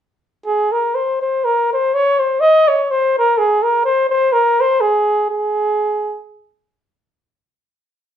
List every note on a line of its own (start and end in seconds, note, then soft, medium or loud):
0.46 0.74 G#4 medium
0.72 0.96 A#4 medium
0.95 1.20 C5 medium
1.22 1.46 C5 medium
1.45 1.69 A#4 medium
1.74 1.96 C5 medium
1.94 2.21 C#5 medium
2.20 2.42 C5 medium
2.41 2.70 D#5 loud
2.68 2.92 C#5 medium
2.90 3.15 C5 medium
3.19 3.40 A#4 medium
3.38 3.64 G#4 medium
3.63 3.84 A#4 medium
3.85 4.09 C5 medium
4.10 4.34 C5 medium
4.33 4.62 A#4 medium
4.61 4.83 C5 medium
4.81 5.28 G#4 medium
5.30 6.22 G#4 medium